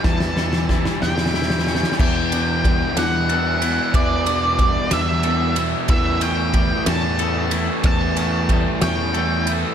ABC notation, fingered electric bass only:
X:1
M:6/8
L:1/8
Q:3/8=62
K:Edor
V:1 name="Fingered electric bass" clef=bass
E,,3 E,,3 | E,,3 E,,3 | E,,3 E,,3 | E,,3 E,,3 |
E,,3 E,,3 |]